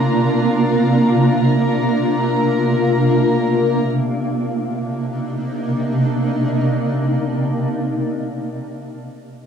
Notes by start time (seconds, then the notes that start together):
Already playing: C3 A#3 D4 F4 A#4 A#5
3.84 C3
3.99 A#3
4.14 D4
4.27 D#4